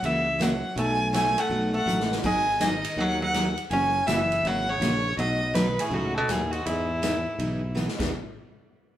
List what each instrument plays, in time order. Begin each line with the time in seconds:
0.03 fretless electric bass C#2, steel-string acoustic guitar C#3 E3 A#3 C#4 F#4, hollow-body jazz guitar E3, fiddle E5, ride
0.39 steel-string acoustic guitar C#3 E3 A#3 C#4 F#4, hollow-body jazz guitar F#3, fiddle F#5, snare, hi-hat pedal, ride
0.76 fretless electric bass B1, steel-string acoustic guitar B2 F#3 A3 D#4 F#4, hollow-body jazz guitar A3, fiddle G#5, ride
1.12 steel-string acoustic guitar B2 F#3 A3 D#4 F#4, hollow-body jazz guitar A3, fiddle G#5, snare, hi-hat pedal, ride
1.38 hollow-body jazz guitar A3, fiddle F#5, ride
1.49 fretless electric bass B1, steel-string acoustic guitar B2 F#3 A3 D#4 F#4
1.74 hollow-body jazz guitar A3, fiddle F#5
1.86 fretless electric bass A1, steel-string acoustic guitar B2 F#3 A3 D#4 F#4, hi-hat pedal
2.00 snare
2.12 snare
2.22 fretless electric bass G#1, steel-string acoustic guitar D#3 F#3 B3 D#4 G#4, hollow-body jazz guitar G#3, fiddle G#5, kick, crash
2.60 steel-string acoustic guitar D#3 F#3 B3 D#4 G#4, hollow-body jazz guitar D#3, fiddle D#5, snare, hi-hat pedal, ride
2.84 ride
2.96 fretless electric bass D#2, steel-string acoustic guitar D#3 F#3 B3 D#4 G#4, hollow-body jazz guitar F#3, fiddle F#5
3.22 hollow-body jazz guitar F#3, fiddle F#5
3.34 steel-string acoustic guitar D#3 F#3 B3 D#4 G#4, snare, hi-hat pedal, ride
3.57 ride
3.71 fretless electric bass F#1, steel-string acoustic guitar C#3 E3 A#3 C#4 F#4, hollow-body jazz guitar C#4, fiddle G#5, ride
4.07 fretless electric bass F#1, steel-string acoustic guitar C#3 E3 A#3 C#4 F#4, fiddle E5, snare, hi-hat pedal, ride
4.11 hollow-body jazz guitar E3
4.32 ride
4.44 fretless electric bass G#1, steel-string acoustic guitar C#3 E3 A#3 C#4 F#4, hollow-body jazz guitar F#3, fiddle F#5, ride
4.70 hollow-body jazz guitar C#3, fiddle C#5
4.80 fretless electric bass A#1, steel-string acoustic guitar C#3 E3 A#3 C#4 F#4, snare, hi-hat pedal, ride
5.17 fretless electric bass B1, steel-string acoustic guitar B2 F#3 A3 D#4 F#4, hollow-body jazz guitar F#3, fiddle D#5, ride
5.54 steel-string acoustic guitar B2 F#3 A3 D#4 F#4, hollow-body jazz guitar D#3, fiddle B4, snare, hi-hat pedal, ride
5.79 hollow-body jazz guitar A2, fiddle G#4, ride
5.90 fretless electric bass C#2, hollow-body jazz guitar A2, steel-string acoustic guitar B2 F#3 A3 D#4 F#4
5.94 fiddle F#4
6.15 hollow-body jazz guitar B2, fiddle A4
6.28 fretless electric bass D#2, hollow-body jazz guitar A2, steel-string acoustic guitar B2 F#3 A3 D#4 F#4, fiddle G#4, snare, hi-hat pedal, ride
6.51 hollow-body jazz guitar G#2, fiddle F#4, ride
6.66 fretless electric bass E2, hollow-body jazz guitar G#2, steel-string acoustic guitar E3 B3 D#4 G#4, fiddle E4, ride
7.02 steel-string acoustic guitar E3 B3 D#4 G#4, snare, hi-hat pedal, ride
7.39 fretless electric bass B1, steel-string acoustic guitar E3 B3 D#4 G#4, ride
7.75 steel-string acoustic guitar E3 B3 D#4 G#4, snare, hi-hat pedal
7.88 snare
7.98 fretless electric bass E2, steel-string acoustic guitar E3 B3 D#4 G#4, kick, snare, crash